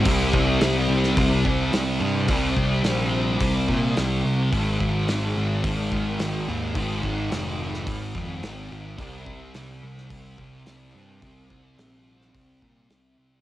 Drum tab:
HH |o---o---o---o---|o---o---o---o---|o---o---o---o---|o---o---o---o---|
SD |----o--o----o---|----o-------o---|----o-------o---|----o--o----o---|
BD |o-o-----o-o-----|o-o-----o-o-----|o-o-----o-o-----|o-o-----o-o-----|

HH |o---o---o---o---|o---o---o---o---|
SD |----o--o----o---|----o--o----o---|
BD |o-o-----o-o-----|o-o-----o-o-----|